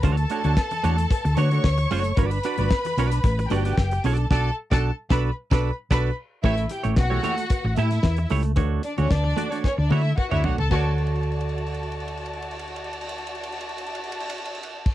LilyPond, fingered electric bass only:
\new Staff \with { instrumentName = "Fingered electric bass" } { \clef bass \time 4/4 \key d \major \tempo 4 = 112 d,8 r16 d,16 r8 e,8 r16 d,16 d8 d,8 fis,,8 | g,,8 r16 g,,16 r8 b,,8 a,,8 g,,8 fis,,8 b,,8 | b,,8 r16 b,,8 r16 b,,8 r16 b,,8 r16 b,,8 r8 | a,,8 r16 a,,16 b,,8 r8. a,,16 a,8 e,8 cis,8 |
d,8 r16 d,16 d,8 r8. d,16 d8 r16 d,16 b,,16 cis,16 | d,1~ | d,1 | }